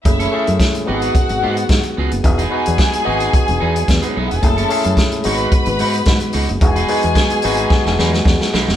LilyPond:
<<
  \new Staff \with { instrumentName = "String section" } { \time 4/4 \key e \major \tempo 4 = 110 <e' e''>4 r8 <fis' fis''>2 r8 | <gis' gis''>2.~ <gis' gis''>32 r32 <b b'>32 <cis' cis''>32 <dis' dis''>32 <e' e''>32 <fis' fis''>32 <gis' gis''>32 | <a' a''>4 r8 <b' b''>2 r8 | <gis' gis''>2.~ <gis' gis''>8 r8 | }
  \new Staff \with { instrumentName = "Clean electric guitar" } { \time 4/4 \key e \major r16 <cis' e' a'>16 <cis' e' a'>16 r8. <b fis' b'>16 <b fis' gis'>16 r8 <b fis' gis'>16 r8. <b fis' gis'>16 r16 | r16 <b dis' gis'>16 <b dis' gis'>16 r8. <b dis' gis'>16 <b dis' gis'>16 r8 <b dis' gis'>16 r8 <b dis' gis'>16 <b dis' gis'>16 r16 | r16 <cis' e' a'>16 <cis' e' a'>16 r8. <dis' fis' cis''>16 <dis' fis' b'>16 r8 <dis' fis' b'>16 r8. <dis' fis' b'>16 r16 | r16 <dis' gis' b'>16 <dis' gis' b'>16 r8. <dis' gis' b'>16 <dis' gis' b'>16 r8 <dis' gis' b'>16 r8. <dis' gis' b'>16 r16 | }
  \new Staff \with { instrumentName = "Tine electric piano" } { \time 4/4 \key e \major <a cis' e' gis'>8 <a cis' e' gis'>8 r8 <b dis' fis' g' gis'>4. r4 | <b dis' fis' gis'>8 <b dis' fis' b'>8 r8 <b dis' fis' gis'>4. r4 | <a cis' e' gis'>8 <a cis' e' gis'>8 r8 <gis b dis' fis'>4. r4 | <gis b dis' fis'>8 <gis b dis' fis'>8 r8 <gis b dis' fis'>4. r4 | }
  \new Staff \with { instrumentName = "Fingered electric bass" } { \clef bass \time 4/4 \key e \major fis,,8 r16 fis,16 r8 gis,,8 r16 gis,,16 gis,8 gis,16 r16 cis,16 fis,,16 | e,,8 r16 e,16 r8 gis,,8 r16 e,,16 e,8 e,16 r16 b,,16 e,,16 | fis,,8 r16 fis,16 r8 gis,,8 r16 gis,,16 gis,8 gis,16 r16 cis,16 fis,,16 | e,,8 r16 e,16 r8 gis,,8 r16 e,,16 e,8 e,16 r16 b,,16 e,,16 | }
  \new DrumStaff \with { instrumentName = "Drums" } \drummode { \time 4/4 <hh bd>16 hh8 hh16 <hh bd sn>16 hh8 hh16 <hh bd>16 hh8 hh16 <hh bd sn>16 hh8 hh16 | <hh bd>16 hh8 hh16 <hh bd sn>16 hh8 hh16 <hh bd>16 hh8 hh16 <hh bd sn>16 hh8 hh16 | <hh bd>16 hh16 hho16 hh16 <hh bd sn>16 hh16 hho16 hh16 <hh bd>16 hh16 hho16 hh16 <hh bd sn>16 hh16 hho16 hh16 | <hh bd>16 hh16 hho16 hh16 <hh bd sn>16 hh16 hho16 hh16 <bd sn>16 sn16 sn16 sn16 <bd sn>16 sn16 sn16 sn16 | }
>>